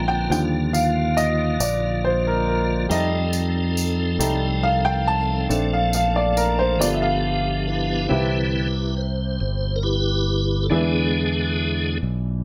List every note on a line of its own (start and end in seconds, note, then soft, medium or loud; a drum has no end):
0.00 0.26 A#1 medium
0.00 0.28 D3 medium
0.00 0.26 G3 medium
0.00 0.26 G#3 soft
0.00 0.28 A#3 medium
0.00 0.26 C4 soft
0.00 0.29 C4 medium
0.00 0.26 D4 medium
0.00 2.86 F4 medium
0.00 0.08 G5 medium
0.00 0.32 G#5 medium
0.00 0.33 A#5 medium
0.08 0.30 G5 medium
0.29 1.56 D#2 medium
0.29 2.87 D3 medium
0.29 2.87 D3 soft
0.29 2.86 F3 soft
0.29 2.86 G3 soft
0.29 2.87 A#3 soft
0.29 0.41 G5 medium
0.29 tambourine soft
0.73 1.18 F5 medium
0.73 tambourine medium
1.17 1.62 D#5 medium
1.17 tambourine soft
1.60 2.86 A#1 medium
1.60 2.01 D5 medium
1.60 tambourine medium
2.05 2.26 C5 medium
2.27 2.32 A#4 medium
2.48 2.92 A#4 medium
2.89 4.16 F2 medium
2.89 8.07 F3 medium
2.89 4.18 G3 soft
2.89 4.18 A3 soft
2.89 5.47 C4 medium
2.89 5.48 D#4 medium
2.89 4.18 D#4 medium
2.89 6.77 A4 medium
2.89 3.31 D#5 medium
2.89 tambourine soft
3.33 tambourine medium
3.77 tambourine soft
4.19 5.46 C2 medium
4.19 4.59 G3 soft
4.19 4.59 A3 soft
4.19 4.59 D#4 soft
4.19 tambourine medium
4.63 4.86 F5 loud
4.85 4.90 G5 loud
5.07 5.74 A5 loud
5.49 6.80 A#1 loud
5.49 6.08 A3 soft
5.49 6.79 A3 medium
5.49 6.08 C4 soft
5.49 6.78 D4 medium
5.49 6.08 D4 medium
5.49 tambourine soft
5.73 5.93 F5 medium
5.93 6.14 F5 medium
5.93 tambourine medium
6.16 6.38 D5 medium
6.37 6.60 A#4 medium
6.37 tambourine medium
6.59 6.81 C5 medium
6.79 8.07 G1 medium
6.79 7.38 A3 soft
6.79 8.07 B3 medium
6.79 7.38 B3 soft
6.79 8.07 D4 medium
6.79 7.39 F4 medium
6.79 7.67 G4 medium
6.79 6.86 D5 medium
6.79 tambourine medium
6.94 7.02 E5 medium
7.02 7.85 F5 medium
7.67 8.95 E4 medium
7.67 8.94 G4 medium
7.67 9.02 B4 medium
8.09 9.38 C2 medium
8.09 9.37 C3 soft
8.09 8.68 D3 soft
8.09 8.68 E3 soft
8.09 10.67 C4 soft
8.09 8.68 C4 soft
8.09 10.67 E4 soft
8.09 10.68 G4 soft
8.09 10.68 B4 soft
8.09 10.68 E5 medium
8.97 9.39 C5 medium
9.40 10.68 G1 medium
9.40 9.79 C5 medium
9.76 9.84 A#4 medium
9.83 10.67 E4 medium
9.83 10.67 G4 medium
9.83 10.66 B4 medium
10.63 10.71 A4 soft
10.70 11.98 E2 medium
10.70 11.97 D3 soft
10.70 11.98 E3 soft
10.70 11.98 G#3 soft
10.70 11.98 B3 soft
10.70 12.44 D4 medium
10.70 11.98 D4 soft
10.70 12.44 E4 soft
10.70 11.98 G#4 medium
10.70 12.44 G#4 soft
10.70 12.44 B4 soft
10.70 12.44 E5 medium
12.03 12.44 B1 medium